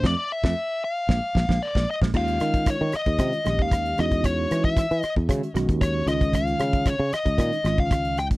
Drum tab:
CC |----------------|x---------------|----------------|----------------|
HH |----------------|-xxxx-xxxxx-xxxx|x-x-xxx-xxxxx-xx|xxxxx-xxxxx-xxxx|
SD |o--o----o-oo-o-o|r-r-r-r-r-r-r-r-|r-r-r-r-r-r-r-r-|r-r-r-r-r-r-r-r-|
BD |o--o----o-oo-o-o|o--oo--oo--oo--o|o--oo--oo--oo--o|o--oo--oo--oo--o|